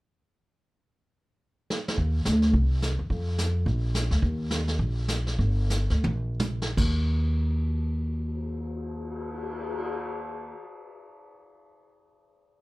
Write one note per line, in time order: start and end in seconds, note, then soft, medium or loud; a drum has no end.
1.70 snare medium
1.88 snare medium
1.98 2.24 D#2 medium
1.98 brush sweep soft
1.98 kick soft
2.25 2.53 D2 medium
2.25 snare medium
2.25 hi-hat pedal soft
2.42 snare soft
2.53 2.96 C2 medium
2.53 brush sweep soft
2.53 kick soft
2.82 snare medium
2.82 hi-hat pedal soft
2.99 3.09 E2 medium
3.10 3.64 F2 medium
3.10 brush sweep soft
3.10 kick soft
3.38 snare medium
3.38 hi-hat pedal medium
3.66 4.08 A#1 medium
3.66 brush sweep soft
3.66 kick soft
3.95 snare medium
3.95 hi-hat pedal medium
4.11 4.22 D2 medium
4.11 snare soft
4.22 4.76 D#2 medium
4.22 brush sweep medium
4.22 kick soft
4.51 snare medium
4.51 hi-hat pedal medium
4.68 snare soft
4.79 5.36 A#1 medium
4.79 brush sweep soft
4.79 kick soft
5.08 snare medium
5.08 hi-hat pedal medium
5.27 snare soft
5.39 5.87 G1 medium
5.39 brush sweep soft
5.39 kick soft
5.70 snare medium
5.70 hi-hat pedal medium
5.90 6.03 D2 medium
5.90 snare soft
6.04 6.74 A#1 medium
6.04 high tom soft
6.40 hi-hat pedal soft
6.40 mid tom medium
6.62 snare medium
6.77 10.51 D#2 medium
6.77 kick medium
6.77 crash medium
7.01 cymbal swell soft